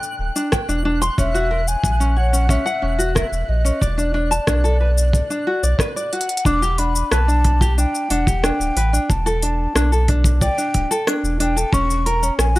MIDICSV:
0, 0, Header, 1, 6, 480
1, 0, Start_track
1, 0, Key_signature, 1, "minor"
1, 0, Tempo, 659341
1, 858, Time_signature, 4, 2, 24, 8
1, 9168, End_track
2, 0, Start_track
2, 0, Title_t, "Synth texture"
2, 0, Program_c, 0, 99
2, 0, Note_on_c, 0, 90, 86
2, 4711, Note_off_c, 0, 90, 0
2, 9168, End_track
3, 0, Start_track
3, 0, Title_t, "Flute"
3, 0, Program_c, 1, 73
3, 0, Note_on_c, 1, 79, 117
3, 351, Note_off_c, 1, 79, 0
3, 864, Note_on_c, 1, 76, 100
3, 1222, Note_on_c, 1, 80, 104
3, 1233, Note_off_c, 1, 76, 0
3, 1582, Note_on_c, 1, 78, 97
3, 1593, Note_off_c, 1, 80, 0
3, 1821, Note_on_c, 1, 76, 97
3, 1832, Note_off_c, 1, 78, 0
3, 2297, Note_off_c, 1, 76, 0
3, 2302, Note_on_c, 1, 76, 91
3, 2541, Note_on_c, 1, 75, 87
3, 2552, Note_off_c, 1, 76, 0
3, 2781, Note_on_c, 1, 74, 92
3, 2792, Note_off_c, 1, 75, 0
3, 4279, Note_off_c, 1, 74, 0
3, 4456, Note_on_c, 1, 78, 91
3, 4700, Note_on_c, 1, 86, 113
3, 4711, Note_off_c, 1, 78, 0
3, 4940, Note_on_c, 1, 83, 97
3, 4951, Note_off_c, 1, 86, 0
3, 5180, Note_on_c, 1, 81, 101
3, 5191, Note_off_c, 1, 83, 0
3, 5656, Note_off_c, 1, 81, 0
3, 5660, Note_on_c, 1, 79, 97
3, 5899, Note_on_c, 1, 78, 93
3, 5910, Note_off_c, 1, 79, 0
3, 6140, Note_on_c, 1, 79, 87
3, 6151, Note_off_c, 1, 78, 0
3, 6621, Note_on_c, 1, 81, 84
3, 6632, Note_off_c, 1, 79, 0
3, 7340, Note_off_c, 1, 81, 0
3, 7580, Note_on_c, 1, 79, 113
3, 8030, Note_off_c, 1, 79, 0
3, 8306, Note_on_c, 1, 79, 95
3, 8540, Note_on_c, 1, 85, 110
3, 8551, Note_off_c, 1, 79, 0
3, 8781, Note_on_c, 1, 82, 106
3, 8792, Note_off_c, 1, 85, 0
3, 9010, Note_off_c, 1, 82, 0
3, 9014, Note_on_c, 1, 80, 103
3, 9168, Note_off_c, 1, 80, 0
3, 9168, End_track
4, 0, Start_track
4, 0, Title_t, "Ukulele"
4, 0, Program_c, 2, 24
4, 259, Note_on_c, 2, 62, 70
4, 367, Note_off_c, 2, 62, 0
4, 379, Note_on_c, 2, 79, 76
4, 487, Note_off_c, 2, 79, 0
4, 499, Note_on_c, 2, 62, 78
4, 607, Note_off_c, 2, 62, 0
4, 619, Note_on_c, 2, 62, 93
4, 727, Note_off_c, 2, 62, 0
4, 739, Note_on_c, 2, 84, 100
4, 847, Note_off_c, 2, 84, 0
4, 860, Note_on_c, 2, 61, 86
4, 967, Note_off_c, 2, 61, 0
4, 978, Note_on_c, 2, 66, 97
4, 1086, Note_off_c, 2, 66, 0
4, 1097, Note_on_c, 2, 70, 67
4, 1166, Note_off_c, 2, 70, 0
4, 1457, Note_on_c, 2, 61, 66
4, 1566, Note_off_c, 2, 61, 0
4, 1576, Note_on_c, 2, 73, 65
4, 1685, Note_off_c, 2, 73, 0
4, 1696, Note_on_c, 2, 61, 76
4, 1805, Note_off_c, 2, 61, 0
4, 1814, Note_on_c, 2, 61, 104
4, 1924, Note_off_c, 2, 61, 0
4, 1934, Note_on_c, 2, 78, 96
4, 2044, Note_off_c, 2, 78, 0
4, 2053, Note_on_c, 2, 61, 70
4, 2164, Note_off_c, 2, 61, 0
4, 2173, Note_on_c, 2, 66, 86
4, 2284, Note_off_c, 2, 66, 0
4, 2293, Note_on_c, 2, 70, 79
4, 2364, Note_off_c, 2, 70, 0
4, 2654, Note_on_c, 2, 61, 82
4, 2764, Note_off_c, 2, 61, 0
4, 2775, Note_on_c, 2, 74, 84
4, 2885, Note_off_c, 2, 74, 0
4, 2894, Note_on_c, 2, 62, 74
4, 3005, Note_off_c, 2, 62, 0
4, 3014, Note_on_c, 2, 62, 91
4, 3124, Note_off_c, 2, 62, 0
4, 3136, Note_on_c, 2, 81, 91
4, 3245, Note_off_c, 2, 81, 0
4, 3257, Note_on_c, 2, 62, 83
4, 3366, Note_off_c, 2, 62, 0
4, 3377, Note_on_c, 2, 69, 96
4, 3486, Note_off_c, 2, 69, 0
4, 3498, Note_on_c, 2, 71, 63
4, 3567, Note_off_c, 2, 71, 0
4, 3860, Note_on_c, 2, 62, 70
4, 3967, Note_off_c, 2, 62, 0
4, 3981, Note_on_c, 2, 66, 89
4, 4088, Note_off_c, 2, 66, 0
4, 4101, Note_on_c, 2, 74, 71
4, 4208, Note_off_c, 2, 74, 0
4, 4221, Note_on_c, 2, 71, 74
4, 4328, Note_off_c, 2, 71, 0
4, 4340, Note_on_c, 2, 74, 73
4, 4448, Note_off_c, 2, 74, 0
4, 4461, Note_on_c, 2, 66, 75
4, 4568, Note_off_c, 2, 66, 0
4, 4700, Note_on_c, 2, 62, 99
4, 4808, Note_off_c, 2, 62, 0
4, 4821, Note_on_c, 2, 67, 76
4, 4934, Note_off_c, 2, 67, 0
4, 4940, Note_on_c, 2, 62, 73
4, 5167, Note_off_c, 2, 62, 0
4, 5181, Note_on_c, 2, 71, 80
4, 5288, Note_off_c, 2, 71, 0
4, 5300, Note_on_c, 2, 62, 71
4, 5527, Note_off_c, 2, 62, 0
4, 5541, Note_on_c, 2, 67, 94
4, 5648, Note_off_c, 2, 67, 0
4, 5661, Note_on_c, 2, 62, 77
4, 5888, Note_off_c, 2, 62, 0
4, 5901, Note_on_c, 2, 62, 96
4, 6008, Note_off_c, 2, 62, 0
4, 6021, Note_on_c, 2, 67, 65
4, 6134, Note_off_c, 2, 67, 0
4, 6141, Note_on_c, 2, 62, 83
4, 6368, Note_off_c, 2, 62, 0
4, 6383, Note_on_c, 2, 71, 69
4, 6489, Note_off_c, 2, 71, 0
4, 6501, Note_on_c, 2, 62, 84
4, 6620, Note_off_c, 2, 62, 0
4, 6742, Note_on_c, 2, 69, 102
4, 6848, Note_off_c, 2, 69, 0
4, 6862, Note_on_c, 2, 62, 73
4, 7089, Note_off_c, 2, 62, 0
4, 7102, Note_on_c, 2, 62, 91
4, 7208, Note_off_c, 2, 62, 0
4, 7222, Note_on_c, 2, 69, 68
4, 7335, Note_off_c, 2, 69, 0
4, 7344, Note_on_c, 2, 62, 72
4, 7569, Note_off_c, 2, 62, 0
4, 7583, Note_on_c, 2, 74, 83
4, 7689, Note_off_c, 2, 74, 0
4, 7702, Note_on_c, 2, 62, 80
4, 7928, Note_off_c, 2, 62, 0
4, 7941, Note_on_c, 2, 69, 95
4, 8048, Note_off_c, 2, 69, 0
4, 8061, Note_on_c, 2, 62, 80
4, 8288, Note_off_c, 2, 62, 0
4, 8299, Note_on_c, 2, 62, 97
4, 8407, Note_off_c, 2, 62, 0
4, 8418, Note_on_c, 2, 69, 78
4, 8532, Note_off_c, 2, 69, 0
4, 8540, Note_on_c, 2, 61, 84
4, 8768, Note_off_c, 2, 61, 0
4, 8781, Note_on_c, 2, 70, 75
4, 8888, Note_off_c, 2, 70, 0
4, 8900, Note_on_c, 2, 61, 66
4, 9127, Note_off_c, 2, 61, 0
4, 9142, Note_on_c, 2, 66, 91
4, 9168, Note_off_c, 2, 66, 0
4, 9168, End_track
5, 0, Start_track
5, 0, Title_t, "Sub bass"
5, 0, Program_c, 3, 38
5, 139, Note_on_c, 3, 26, 79
5, 221, Note_off_c, 3, 26, 0
5, 499, Note_on_c, 3, 28, 90
5, 799, Note_off_c, 3, 28, 0
5, 860, Note_on_c, 3, 28, 107
5, 1279, Note_off_c, 3, 28, 0
5, 1336, Note_on_c, 3, 34, 79
5, 1878, Note_off_c, 3, 34, 0
5, 2059, Note_on_c, 3, 28, 101
5, 2359, Note_off_c, 3, 28, 0
5, 2417, Note_on_c, 3, 28, 82
5, 2501, Note_off_c, 3, 28, 0
5, 2539, Note_on_c, 3, 34, 86
5, 2704, Note_off_c, 3, 34, 0
5, 2779, Note_on_c, 3, 28, 98
5, 3199, Note_off_c, 3, 28, 0
5, 3258, Note_on_c, 3, 35, 82
5, 3799, Note_off_c, 3, 35, 0
5, 4100, Note_on_c, 3, 35, 77
5, 4182, Note_off_c, 3, 35, 0
5, 4698, Note_on_c, 3, 28, 105
5, 5118, Note_off_c, 3, 28, 0
5, 5181, Note_on_c, 3, 35, 82
5, 5720, Note_off_c, 3, 35, 0
5, 5899, Note_on_c, 3, 28, 103
5, 6199, Note_off_c, 3, 28, 0
5, 6260, Note_on_c, 3, 26, 92
5, 6342, Note_off_c, 3, 26, 0
5, 6379, Note_on_c, 3, 33, 89
5, 6544, Note_off_c, 3, 33, 0
5, 6623, Note_on_c, 3, 28, 93
5, 7041, Note_off_c, 3, 28, 0
5, 7100, Note_on_c, 3, 35, 80
5, 7639, Note_off_c, 3, 35, 0
5, 7823, Note_on_c, 3, 26, 77
5, 7903, Note_off_c, 3, 26, 0
5, 8179, Note_on_c, 3, 28, 92
5, 8479, Note_off_c, 3, 28, 0
5, 8537, Note_on_c, 3, 28, 104
5, 8958, Note_off_c, 3, 28, 0
5, 9017, Note_on_c, 3, 34, 82
5, 9168, Note_off_c, 3, 34, 0
5, 9168, End_track
6, 0, Start_track
6, 0, Title_t, "Drums"
6, 22, Note_on_c, 9, 82, 30
6, 95, Note_off_c, 9, 82, 0
6, 263, Note_on_c, 9, 82, 57
6, 336, Note_off_c, 9, 82, 0
6, 379, Note_on_c, 9, 37, 97
6, 384, Note_on_c, 9, 36, 97
6, 384, Note_on_c, 9, 82, 55
6, 452, Note_off_c, 9, 37, 0
6, 457, Note_off_c, 9, 36, 0
6, 457, Note_off_c, 9, 82, 0
6, 503, Note_on_c, 9, 82, 30
6, 576, Note_off_c, 9, 82, 0
6, 743, Note_on_c, 9, 82, 61
6, 816, Note_off_c, 9, 82, 0
6, 860, Note_on_c, 9, 36, 94
6, 863, Note_on_c, 9, 82, 50
6, 933, Note_off_c, 9, 36, 0
6, 936, Note_off_c, 9, 82, 0
6, 983, Note_on_c, 9, 82, 29
6, 1056, Note_off_c, 9, 82, 0
6, 1222, Note_on_c, 9, 82, 60
6, 1295, Note_off_c, 9, 82, 0
6, 1336, Note_on_c, 9, 36, 88
6, 1344, Note_on_c, 9, 82, 51
6, 1409, Note_off_c, 9, 36, 0
6, 1416, Note_off_c, 9, 82, 0
6, 1463, Note_on_c, 9, 82, 30
6, 1536, Note_off_c, 9, 82, 0
6, 1703, Note_on_c, 9, 82, 60
6, 1776, Note_off_c, 9, 82, 0
6, 1813, Note_on_c, 9, 36, 93
6, 1822, Note_on_c, 9, 82, 54
6, 1886, Note_off_c, 9, 36, 0
6, 1895, Note_off_c, 9, 82, 0
6, 1943, Note_on_c, 9, 82, 27
6, 2016, Note_off_c, 9, 82, 0
6, 2182, Note_on_c, 9, 82, 56
6, 2255, Note_off_c, 9, 82, 0
6, 2299, Note_on_c, 9, 37, 96
6, 2301, Note_on_c, 9, 36, 92
6, 2304, Note_on_c, 9, 82, 54
6, 2372, Note_off_c, 9, 37, 0
6, 2373, Note_off_c, 9, 36, 0
6, 2377, Note_off_c, 9, 82, 0
6, 2423, Note_on_c, 9, 82, 28
6, 2496, Note_off_c, 9, 82, 0
6, 2664, Note_on_c, 9, 82, 64
6, 2736, Note_off_c, 9, 82, 0
6, 2779, Note_on_c, 9, 36, 98
6, 2784, Note_on_c, 9, 82, 49
6, 2852, Note_off_c, 9, 36, 0
6, 2856, Note_off_c, 9, 82, 0
6, 2904, Note_on_c, 9, 82, 31
6, 2976, Note_off_c, 9, 82, 0
6, 3143, Note_on_c, 9, 82, 64
6, 3216, Note_off_c, 9, 82, 0
6, 3256, Note_on_c, 9, 37, 100
6, 3258, Note_on_c, 9, 36, 92
6, 3261, Note_on_c, 9, 82, 52
6, 3329, Note_off_c, 9, 37, 0
6, 3331, Note_off_c, 9, 36, 0
6, 3334, Note_off_c, 9, 82, 0
6, 3384, Note_on_c, 9, 82, 31
6, 3457, Note_off_c, 9, 82, 0
6, 3624, Note_on_c, 9, 82, 63
6, 3697, Note_off_c, 9, 82, 0
6, 3738, Note_on_c, 9, 36, 95
6, 3744, Note_on_c, 9, 82, 52
6, 3810, Note_off_c, 9, 36, 0
6, 3817, Note_off_c, 9, 82, 0
6, 3864, Note_on_c, 9, 82, 30
6, 3937, Note_off_c, 9, 82, 0
6, 4103, Note_on_c, 9, 82, 59
6, 4176, Note_off_c, 9, 82, 0
6, 4213, Note_on_c, 9, 36, 102
6, 4220, Note_on_c, 9, 37, 97
6, 4225, Note_on_c, 9, 82, 50
6, 4286, Note_off_c, 9, 36, 0
6, 4292, Note_off_c, 9, 37, 0
6, 4297, Note_off_c, 9, 82, 0
6, 4345, Note_on_c, 9, 82, 29
6, 4418, Note_off_c, 9, 82, 0
6, 4461, Note_on_c, 9, 42, 57
6, 4519, Note_off_c, 9, 42, 0
6, 4519, Note_on_c, 9, 42, 67
6, 4580, Note_off_c, 9, 42, 0
6, 4580, Note_on_c, 9, 42, 71
6, 4640, Note_off_c, 9, 42, 0
6, 4640, Note_on_c, 9, 42, 75
6, 4697, Note_on_c, 9, 36, 112
6, 4703, Note_on_c, 9, 82, 49
6, 4712, Note_off_c, 9, 42, 0
6, 4770, Note_off_c, 9, 36, 0
6, 4776, Note_off_c, 9, 82, 0
6, 4825, Note_on_c, 9, 82, 33
6, 4897, Note_off_c, 9, 82, 0
6, 4938, Note_on_c, 9, 46, 85
6, 5011, Note_off_c, 9, 46, 0
6, 5064, Note_on_c, 9, 82, 65
6, 5137, Note_off_c, 9, 82, 0
6, 5180, Note_on_c, 9, 37, 103
6, 5185, Note_on_c, 9, 82, 54
6, 5253, Note_off_c, 9, 37, 0
6, 5258, Note_off_c, 9, 82, 0
6, 5307, Note_on_c, 9, 82, 34
6, 5380, Note_off_c, 9, 82, 0
6, 5420, Note_on_c, 9, 46, 90
6, 5421, Note_on_c, 9, 36, 62
6, 5493, Note_off_c, 9, 46, 0
6, 5494, Note_off_c, 9, 36, 0
6, 5540, Note_on_c, 9, 36, 92
6, 5547, Note_on_c, 9, 82, 61
6, 5613, Note_off_c, 9, 36, 0
6, 5620, Note_off_c, 9, 82, 0
6, 5667, Note_on_c, 9, 82, 58
6, 5740, Note_off_c, 9, 82, 0
6, 5787, Note_on_c, 9, 82, 32
6, 5860, Note_off_c, 9, 82, 0
6, 5899, Note_on_c, 9, 46, 86
6, 5972, Note_off_c, 9, 46, 0
6, 6021, Note_on_c, 9, 36, 104
6, 6026, Note_on_c, 9, 82, 60
6, 6094, Note_off_c, 9, 36, 0
6, 6098, Note_off_c, 9, 82, 0
6, 6142, Note_on_c, 9, 37, 112
6, 6147, Note_on_c, 9, 82, 58
6, 6214, Note_off_c, 9, 37, 0
6, 6220, Note_off_c, 9, 82, 0
6, 6267, Note_on_c, 9, 82, 31
6, 6340, Note_off_c, 9, 82, 0
6, 6382, Note_on_c, 9, 46, 98
6, 6455, Note_off_c, 9, 46, 0
6, 6510, Note_on_c, 9, 82, 69
6, 6583, Note_off_c, 9, 82, 0
6, 6622, Note_on_c, 9, 36, 121
6, 6627, Note_on_c, 9, 82, 51
6, 6695, Note_off_c, 9, 36, 0
6, 6700, Note_off_c, 9, 82, 0
6, 6748, Note_on_c, 9, 82, 34
6, 6820, Note_off_c, 9, 82, 0
6, 6862, Note_on_c, 9, 46, 94
6, 6934, Note_off_c, 9, 46, 0
6, 7102, Note_on_c, 9, 37, 106
6, 7107, Note_on_c, 9, 82, 68
6, 7175, Note_off_c, 9, 37, 0
6, 7180, Note_off_c, 9, 82, 0
6, 7227, Note_on_c, 9, 82, 34
6, 7299, Note_off_c, 9, 82, 0
6, 7340, Note_on_c, 9, 46, 84
6, 7342, Note_on_c, 9, 36, 67
6, 7413, Note_off_c, 9, 46, 0
6, 7415, Note_off_c, 9, 36, 0
6, 7457, Note_on_c, 9, 36, 106
6, 7463, Note_on_c, 9, 82, 70
6, 7530, Note_off_c, 9, 36, 0
6, 7536, Note_off_c, 9, 82, 0
6, 7582, Note_on_c, 9, 36, 100
6, 7584, Note_on_c, 9, 82, 56
6, 7655, Note_off_c, 9, 36, 0
6, 7657, Note_off_c, 9, 82, 0
6, 7704, Note_on_c, 9, 82, 34
6, 7777, Note_off_c, 9, 82, 0
6, 7821, Note_on_c, 9, 46, 94
6, 7823, Note_on_c, 9, 36, 63
6, 7893, Note_off_c, 9, 46, 0
6, 7896, Note_off_c, 9, 36, 0
6, 7947, Note_on_c, 9, 82, 64
6, 8020, Note_off_c, 9, 82, 0
6, 8061, Note_on_c, 9, 37, 105
6, 8066, Note_on_c, 9, 82, 56
6, 8134, Note_off_c, 9, 37, 0
6, 8139, Note_off_c, 9, 82, 0
6, 8188, Note_on_c, 9, 82, 35
6, 8261, Note_off_c, 9, 82, 0
6, 8301, Note_on_c, 9, 46, 97
6, 8374, Note_off_c, 9, 46, 0
6, 8427, Note_on_c, 9, 82, 66
6, 8499, Note_off_c, 9, 82, 0
6, 8537, Note_on_c, 9, 36, 123
6, 8546, Note_on_c, 9, 82, 50
6, 8609, Note_off_c, 9, 36, 0
6, 8619, Note_off_c, 9, 82, 0
6, 8667, Note_on_c, 9, 82, 34
6, 8740, Note_off_c, 9, 82, 0
6, 8782, Note_on_c, 9, 46, 85
6, 8855, Note_off_c, 9, 46, 0
6, 8905, Note_on_c, 9, 82, 70
6, 8977, Note_off_c, 9, 82, 0
6, 9019, Note_on_c, 9, 37, 100
6, 9024, Note_on_c, 9, 82, 55
6, 9091, Note_off_c, 9, 37, 0
6, 9096, Note_off_c, 9, 82, 0
6, 9144, Note_on_c, 9, 82, 36
6, 9168, Note_off_c, 9, 82, 0
6, 9168, End_track
0, 0, End_of_file